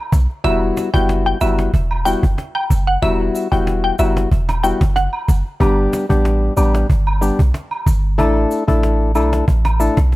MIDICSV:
0, 0, Header, 1, 6, 480
1, 0, Start_track
1, 0, Key_signature, 1, "minor"
1, 0, Tempo, 645161
1, 331, Time_signature, 4, 2, 24, 8
1, 7558, End_track
2, 0, Start_track
2, 0, Title_t, "Synth pluck"
2, 0, Program_c, 0, 84
2, 330, Note_on_c, 0, 76, 107
2, 412, Note_off_c, 0, 76, 0
2, 697, Note_on_c, 0, 79, 89
2, 770, Note_off_c, 0, 79, 0
2, 939, Note_on_c, 0, 79, 78
2, 1011, Note_off_c, 0, 79, 0
2, 1051, Note_on_c, 0, 76, 88
2, 1133, Note_off_c, 0, 76, 0
2, 1528, Note_on_c, 0, 79, 87
2, 1611, Note_off_c, 0, 79, 0
2, 1897, Note_on_c, 0, 79, 80
2, 1970, Note_off_c, 0, 79, 0
2, 2138, Note_on_c, 0, 78, 80
2, 2211, Note_off_c, 0, 78, 0
2, 2251, Note_on_c, 0, 76, 113
2, 2333, Note_off_c, 0, 76, 0
2, 2617, Note_on_c, 0, 79, 74
2, 2690, Note_off_c, 0, 79, 0
2, 2856, Note_on_c, 0, 79, 82
2, 2930, Note_off_c, 0, 79, 0
2, 2970, Note_on_c, 0, 76, 79
2, 3052, Note_off_c, 0, 76, 0
2, 3449, Note_on_c, 0, 79, 74
2, 3531, Note_off_c, 0, 79, 0
2, 3689, Note_on_c, 0, 78, 83
2, 4035, Note_off_c, 0, 78, 0
2, 7558, End_track
3, 0, Start_track
3, 0, Title_t, "Synth stab"
3, 0, Program_c, 1, 62
3, 327, Note_on_c, 1, 55, 101
3, 329, Note_on_c, 1, 59, 87
3, 330, Note_on_c, 1, 64, 92
3, 332, Note_on_c, 1, 66, 111
3, 666, Note_off_c, 1, 55, 0
3, 667, Note_off_c, 1, 59, 0
3, 667, Note_off_c, 1, 64, 0
3, 668, Note_off_c, 1, 66, 0
3, 696, Note_on_c, 1, 55, 77
3, 697, Note_on_c, 1, 59, 73
3, 698, Note_on_c, 1, 64, 72
3, 700, Note_on_c, 1, 66, 86
3, 1023, Note_off_c, 1, 55, 0
3, 1023, Note_off_c, 1, 59, 0
3, 1024, Note_off_c, 1, 64, 0
3, 1025, Note_off_c, 1, 66, 0
3, 1050, Note_on_c, 1, 55, 82
3, 1051, Note_on_c, 1, 59, 71
3, 1052, Note_on_c, 1, 64, 74
3, 1054, Note_on_c, 1, 66, 88
3, 1272, Note_off_c, 1, 55, 0
3, 1273, Note_off_c, 1, 59, 0
3, 1274, Note_off_c, 1, 64, 0
3, 1275, Note_off_c, 1, 66, 0
3, 1528, Note_on_c, 1, 55, 78
3, 1529, Note_on_c, 1, 59, 71
3, 1532, Note_on_c, 1, 64, 72
3, 1533, Note_on_c, 1, 66, 88
3, 1672, Note_off_c, 1, 55, 0
3, 1672, Note_off_c, 1, 59, 0
3, 1673, Note_off_c, 1, 64, 0
3, 1674, Note_off_c, 1, 66, 0
3, 2247, Note_on_c, 1, 55, 97
3, 2250, Note_on_c, 1, 59, 92
3, 2250, Note_on_c, 1, 64, 93
3, 2252, Note_on_c, 1, 66, 111
3, 2586, Note_off_c, 1, 55, 0
3, 2587, Note_off_c, 1, 59, 0
3, 2587, Note_off_c, 1, 64, 0
3, 2588, Note_off_c, 1, 66, 0
3, 2617, Note_on_c, 1, 55, 80
3, 2618, Note_on_c, 1, 59, 69
3, 2620, Note_on_c, 1, 64, 73
3, 2621, Note_on_c, 1, 66, 90
3, 2943, Note_off_c, 1, 55, 0
3, 2944, Note_off_c, 1, 59, 0
3, 2945, Note_off_c, 1, 64, 0
3, 2945, Note_off_c, 1, 66, 0
3, 2967, Note_on_c, 1, 55, 80
3, 2969, Note_on_c, 1, 59, 75
3, 2970, Note_on_c, 1, 64, 76
3, 2972, Note_on_c, 1, 66, 88
3, 3191, Note_off_c, 1, 55, 0
3, 3192, Note_off_c, 1, 59, 0
3, 3193, Note_off_c, 1, 64, 0
3, 3193, Note_off_c, 1, 66, 0
3, 3448, Note_on_c, 1, 55, 75
3, 3449, Note_on_c, 1, 59, 70
3, 3451, Note_on_c, 1, 64, 67
3, 3453, Note_on_c, 1, 66, 87
3, 3591, Note_off_c, 1, 55, 0
3, 3592, Note_off_c, 1, 59, 0
3, 3593, Note_off_c, 1, 64, 0
3, 3594, Note_off_c, 1, 66, 0
3, 4167, Note_on_c, 1, 55, 95
3, 4167, Note_on_c, 1, 59, 89
3, 4169, Note_on_c, 1, 62, 90
3, 4171, Note_on_c, 1, 67, 107
3, 4506, Note_off_c, 1, 55, 0
3, 4506, Note_off_c, 1, 59, 0
3, 4507, Note_off_c, 1, 62, 0
3, 4508, Note_off_c, 1, 67, 0
3, 4533, Note_on_c, 1, 55, 82
3, 4535, Note_on_c, 1, 59, 72
3, 4537, Note_on_c, 1, 62, 75
3, 4538, Note_on_c, 1, 67, 90
3, 4861, Note_off_c, 1, 55, 0
3, 4862, Note_off_c, 1, 59, 0
3, 4863, Note_off_c, 1, 62, 0
3, 4864, Note_off_c, 1, 67, 0
3, 4885, Note_on_c, 1, 55, 81
3, 4888, Note_on_c, 1, 59, 73
3, 4888, Note_on_c, 1, 62, 74
3, 4890, Note_on_c, 1, 67, 91
3, 5110, Note_off_c, 1, 55, 0
3, 5111, Note_off_c, 1, 59, 0
3, 5112, Note_off_c, 1, 62, 0
3, 5112, Note_off_c, 1, 67, 0
3, 5366, Note_on_c, 1, 55, 78
3, 5369, Note_on_c, 1, 59, 70
3, 5370, Note_on_c, 1, 62, 71
3, 5372, Note_on_c, 1, 67, 86
3, 5511, Note_off_c, 1, 55, 0
3, 5512, Note_off_c, 1, 59, 0
3, 5512, Note_off_c, 1, 62, 0
3, 5513, Note_off_c, 1, 67, 0
3, 6086, Note_on_c, 1, 57, 103
3, 6088, Note_on_c, 1, 62, 91
3, 6090, Note_on_c, 1, 64, 92
3, 6091, Note_on_c, 1, 69, 109
3, 6425, Note_off_c, 1, 57, 0
3, 6426, Note_off_c, 1, 62, 0
3, 6427, Note_off_c, 1, 64, 0
3, 6427, Note_off_c, 1, 69, 0
3, 6454, Note_on_c, 1, 57, 77
3, 6456, Note_on_c, 1, 62, 73
3, 6458, Note_on_c, 1, 64, 71
3, 6460, Note_on_c, 1, 69, 91
3, 6782, Note_off_c, 1, 57, 0
3, 6783, Note_off_c, 1, 62, 0
3, 6784, Note_off_c, 1, 64, 0
3, 6785, Note_off_c, 1, 69, 0
3, 6809, Note_on_c, 1, 57, 79
3, 6811, Note_on_c, 1, 62, 72
3, 6812, Note_on_c, 1, 64, 72
3, 6813, Note_on_c, 1, 69, 91
3, 7032, Note_off_c, 1, 57, 0
3, 7033, Note_off_c, 1, 62, 0
3, 7033, Note_off_c, 1, 64, 0
3, 7034, Note_off_c, 1, 69, 0
3, 7289, Note_on_c, 1, 57, 77
3, 7290, Note_on_c, 1, 62, 71
3, 7291, Note_on_c, 1, 64, 74
3, 7293, Note_on_c, 1, 69, 83
3, 7432, Note_off_c, 1, 57, 0
3, 7433, Note_off_c, 1, 62, 0
3, 7433, Note_off_c, 1, 64, 0
3, 7434, Note_off_c, 1, 69, 0
3, 7558, End_track
4, 0, Start_track
4, 0, Title_t, "808-style bass"
4, 0, Program_c, 2, 38
4, 93, Note_on_c, 2, 35, 94
4, 198, Note_off_c, 2, 35, 0
4, 332, Note_on_c, 2, 28, 100
4, 533, Note_off_c, 2, 28, 0
4, 700, Note_on_c, 2, 30, 100
4, 994, Note_off_c, 2, 30, 0
4, 1051, Note_on_c, 2, 30, 94
4, 1252, Note_off_c, 2, 30, 0
4, 1291, Note_on_c, 2, 28, 102
4, 1598, Note_off_c, 2, 28, 0
4, 1660, Note_on_c, 2, 30, 99
4, 1754, Note_off_c, 2, 30, 0
4, 2011, Note_on_c, 2, 30, 96
4, 2212, Note_off_c, 2, 30, 0
4, 2250, Note_on_c, 2, 28, 106
4, 2451, Note_off_c, 2, 28, 0
4, 2619, Note_on_c, 2, 28, 91
4, 2914, Note_off_c, 2, 28, 0
4, 2970, Note_on_c, 2, 30, 90
4, 3171, Note_off_c, 2, 30, 0
4, 3210, Note_on_c, 2, 28, 114
4, 3518, Note_off_c, 2, 28, 0
4, 3580, Note_on_c, 2, 30, 93
4, 3780, Note_off_c, 2, 30, 0
4, 3932, Note_on_c, 2, 30, 102
4, 4038, Note_off_c, 2, 30, 0
4, 4170, Note_on_c, 2, 31, 115
4, 4371, Note_off_c, 2, 31, 0
4, 4539, Note_on_c, 2, 33, 97
4, 4834, Note_off_c, 2, 33, 0
4, 4891, Note_on_c, 2, 33, 97
4, 5092, Note_off_c, 2, 33, 0
4, 5130, Note_on_c, 2, 31, 109
4, 5438, Note_off_c, 2, 31, 0
4, 5499, Note_on_c, 2, 35, 92
4, 5593, Note_off_c, 2, 35, 0
4, 5851, Note_on_c, 2, 31, 100
4, 6091, Note_on_c, 2, 33, 113
4, 6102, Note_off_c, 2, 31, 0
4, 6292, Note_off_c, 2, 33, 0
4, 6460, Note_on_c, 2, 33, 96
4, 6810, Note_on_c, 2, 35, 93
4, 6821, Note_off_c, 2, 33, 0
4, 7011, Note_off_c, 2, 35, 0
4, 7052, Note_on_c, 2, 33, 109
4, 7359, Note_off_c, 2, 33, 0
4, 7420, Note_on_c, 2, 35, 94
4, 7558, Note_off_c, 2, 35, 0
4, 7558, End_track
5, 0, Start_track
5, 0, Title_t, "Cajon"
5, 92, Note_on_c, 9, 36, 110
5, 166, Note_off_c, 9, 36, 0
5, 221, Note_on_c, 9, 38, 38
5, 295, Note_off_c, 9, 38, 0
5, 331, Note_on_c, 9, 36, 120
5, 406, Note_off_c, 9, 36, 0
5, 458, Note_on_c, 9, 38, 35
5, 533, Note_off_c, 9, 38, 0
5, 574, Note_on_c, 9, 38, 94
5, 649, Note_off_c, 9, 38, 0
5, 700, Note_on_c, 9, 36, 104
5, 774, Note_off_c, 9, 36, 0
5, 812, Note_on_c, 9, 38, 103
5, 886, Note_off_c, 9, 38, 0
5, 938, Note_on_c, 9, 38, 30
5, 1013, Note_off_c, 9, 38, 0
5, 1180, Note_on_c, 9, 38, 97
5, 1254, Note_off_c, 9, 38, 0
5, 1291, Note_on_c, 9, 36, 101
5, 1366, Note_off_c, 9, 36, 0
5, 1417, Note_on_c, 9, 38, 32
5, 1492, Note_off_c, 9, 38, 0
5, 1530, Note_on_c, 9, 38, 44
5, 1605, Note_off_c, 9, 38, 0
5, 1660, Note_on_c, 9, 36, 100
5, 1735, Note_off_c, 9, 36, 0
5, 1772, Note_on_c, 9, 38, 95
5, 1846, Note_off_c, 9, 38, 0
5, 1898, Note_on_c, 9, 38, 30
5, 1973, Note_off_c, 9, 38, 0
5, 2011, Note_on_c, 9, 36, 109
5, 2086, Note_off_c, 9, 36, 0
5, 2140, Note_on_c, 9, 38, 39
5, 2214, Note_off_c, 9, 38, 0
5, 2250, Note_on_c, 9, 36, 118
5, 2325, Note_off_c, 9, 36, 0
5, 2378, Note_on_c, 9, 38, 34
5, 2452, Note_off_c, 9, 38, 0
5, 2490, Note_on_c, 9, 38, 39
5, 2564, Note_off_c, 9, 38, 0
5, 2619, Note_on_c, 9, 36, 105
5, 2693, Note_off_c, 9, 36, 0
5, 2731, Note_on_c, 9, 38, 103
5, 2806, Note_off_c, 9, 38, 0
5, 2859, Note_on_c, 9, 38, 31
5, 2933, Note_off_c, 9, 38, 0
5, 3100, Note_on_c, 9, 38, 98
5, 3174, Note_off_c, 9, 38, 0
5, 3211, Note_on_c, 9, 36, 97
5, 3285, Note_off_c, 9, 36, 0
5, 3339, Note_on_c, 9, 38, 95
5, 3413, Note_off_c, 9, 38, 0
5, 3579, Note_on_c, 9, 36, 100
5, 3579, Note_on_c, 9, 38, 104
5, 3653, Note_off_c, 9, 38, 0
5, 3654, Note_off_c, 9, 36, 0
5, 3691, Note_on_c, 9, 38, 97
5, 3766, Note_off_c, 9, 38, 0
5, 3818, Note_on_c, 9, 38, 30
5, 3893, Note_off_c, 9, 38, 0
5, 3931, Note_on_c, 9, 36, 107
5, 4006, Note_off_c, 9, 36, 0
5, 4059, Note_on_c, 9, 38, 38
5, 4133, Note_off_c, 9, 38, 0
5, 4170, Note_on_c, 9, 36, 121
5, 4244, Note_off_c, 9, 36, 0
5, 4297, Note_on_c, 9, 38, 33
5, 4372, Note_off_c, 9, 38, 0
5, 4413, Note_on_c, 9, 38, 97
5, 4487, Note_off_c, 9, 38, 0
5, 4539, Note_on_c, 9, 36, 104
5, 4613, Note_off_c, 9, 36, 0
5, 4651, Note_on_c, 9, 38, 106
5, 4725, Note_off_c, 9, 38, 0
5, 4778, Note_on_c, 9, 38, 31
5, 4853, Note_off_c, 9, 38, 0
5, 5019, Note_on_c, 9, 38, 95
5, 5093, Note_off_c, 9, 38, 0
5, 5131, Note_on_c, 9, 36, 106
5, 5205, Note_off_c, 9, 36, 0
5, 5256, Note_on_c, 9, 38, 31
5, 5331, Note_off_c, 9, 38, 0
5, 5368, Note_on_c, 9, 38, 47
5, 5443, Note_off_c, 9, 38, 0
5, 5500, Note_on_c, 9, 36, 100
5, 5574, Note_off_c, 9, 36, 0
5, 5611, Note_on_c, 9, 38, 95
5, 5686, Note_off_c, 9, 38, 0
5, 5736, Note_on_c, 9, 38, 32
5, 5811, Note_off_c, 9, 38, 0
5, 5851, Note_on_c, 9, 36, 111
5, 5925, Note_off_c, 9, 36, 0
5, 5979, Note_on_c, 9, 38, 38
5, 6053, Note_off_c, 9, 38, 0
5, 6091, Note_on_c, 9, 36, 121
5, 6165, Note_off_c, 9, 36, 0
5, 6218, Note_on_c, 9, 38, 34
5, 6292, Note_off_c, 9, 38, 0
5, 6332, Note_on_c, 9, 38, 40
5, 6406, Note_off_c, 9, 38, 0
5, 6460, Note_on_c, 9, 36, 102
5, 6534, Note_off_c, 9, 36, 0
5, 6572, Note_on_c, 9, 38, 104
5, 6646, Note_off_c, 9, 38, 0
5, 6698, Note_on_c, 9, 38, 30
5, 6773, Note_off_c, 9, 38, 0
5, 6940, Note_on_c, 9, 38, 101
5, 7015, Note_off_c, 9, 38, 0
5, 7051, Note_on_c, 9, 36, 102
5, 7126, Note_off_c, 9, 36, 0
5, 7178, Note_on_c, 9, 38, 94
5, 7253, Note_off_c, 9, 38, 0
5, 7289, Note_on_c, 9, 38, 45
5, 7363, Note_off_c, 9, 38, 0
5, 7418, Note_on_c, 9, 38, 98
5, 7420, Note_on_c, 9, 36, 98
5, 7493, Note_off_c, 9, 38, 0
5, 7494, Note_off_c, 9, 36, 0
5, 7531, Note_on_c, 9, 38, 65
5, 7558, Note_off_c, 9, 38, 0
5, 7558, End_track
6, 0, Start_track
6, 0, Title_t, "Drums"
6, 95, Note_on_c, 9, 69, 79
6, 170, Note_off_c, 9, 69, 0
6, 334, Note_on_c, 9, 76, 77
6, 408, Note_off_c, 9, 76, 0
6, 573, Note_on_c, 9, 69, 72
6, 647, Note_off_c, 9, 69, 0
6, 1049, Note_on_c, 9, 69, 70
6, 1049, Note_on_c, 9, 76, 73
6, 1124, Note_off_c, 9, 69, 0
6, 1124, Note_off_c, 9, 76, 0
6, 1420, Note_on_c, 9, 76, 87
6, 1494, Note_off_c, 9, 76, 0
6, 1532, Note_on_c, 9, 69, 97
6, 1606, Note_off_c, 9, 69, 0
6, 1897, Note_on_c, 9, 76, 76
6, 1971, Note_off_c, 9, 76, 0
6, 2015, Note_on_c, 9, 69, 79
6, 2090, Note_off_c, 9, 69, 0
6, 2253, Note_on_c, 9, 76, 79
6, 2327, Note_off_c, 9, 76, 0
6, 2494, Note_on_c, 9, 69, 68
6, 2568, Note_off_c, 9, 69, 0
6, 2967, Note_on_c, 9, 69, 70
6, 2967, Note_on_c, 9, 76, 69
6, 3041, Note_off_c, 9, 69, 0
6, 3041, Note_off_c, 9, 76, 0
6, 3338, Note_on_c, 9, 76, 85
6, 3413, Note_off_c, 9, 76, 0
6, 3452, Note_on_c, 9, 69, 97
6, 3526, Note_off_c, 9, 69, 0
6, 3815, Note_on_c, 9, 76, 75
6, 3890, Note_off_c, 9, 76, 0
6, 3934, Note_on_c, 9, 69, 78
6, 4009, Note_off_c, 9, 69, 0
6, 4173, Note_on_c, 9, 76, 78
6, 4247, Note_off_c, 9, 76, 0
6, 4412, Note_on_c, 9, 69, 72
6, 4487, Note_off_c, 9, 69, 0
6, 4888, Note_on_c, 9, 69, 75
6, 4888, Note_on_c, 9, 76, 73
6, 4963, Note_off_c, 9, 69, 0
6, 4963, Note_off_c, 9, 76, 0
6, 5260, Note_on_c, 9, 76, 87
6, 5334, Note_off_c, 9, 76, 0
6, 5373, Note_on_c, 9, 69, 97
6, 5448, Note_off_c, 9, 69, 0
6, 5737, Note_on_c, 9, 76, 78
6, 5811, Note_off_c, 9, 76, 0
6, 5857, Note_on_c, 9, 69, 76
6, 5931, Note_off_c, 9, 69, 0
6, 6093, Note_on_c, 9, 76, 78
6, 6167, Note_off_c, 9, 76, 0
6, 6332, Note_on_c, 9, 69, 71
6, 6406, Note_off_c, 9, 69, 0
6, 6808, Note_on_c, 9, 69, 70
6, 6808, Note_on_c, 9, 76, 73
6, 6882, Note_off_c, 9, 69, 0
6, 6882, Note_off_c, 9, 76, 0
6, 7180, Note_on_c, 9, 76, 86
6, 7255, Note_off_c, 9, 76, 0
6, 7292, Note_on_c, 9, 69, 95
6, 7367, Note_off_c, 9, 69, 0
6, 7558, End_track
0, 0, End_of_file